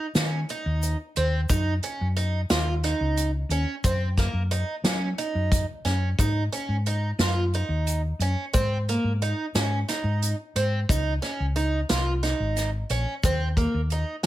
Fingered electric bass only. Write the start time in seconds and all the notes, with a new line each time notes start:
0.15 D#3
0.66 D#2
1.17 D#2
1.49 F#2
2.01 F#2
2.50 D#2
3.01 C#2
3.49 D#2
3.84 F#2
4.33 F#2
4.83 F#3
5.35 F#2
5.85 F#2
6.19 G#2
6.69 G#2
7.19 F#2
7.69 D#2
8.19 F#2
8.54 G#2
9.04 G#2
9.55 G#2
10.04 G#2
10.55 G#2
10.89 C#2
11.40 C#2
11.90 C2
12.40 G#1
12.90 A#1
13.24 D#2
13.74 D#2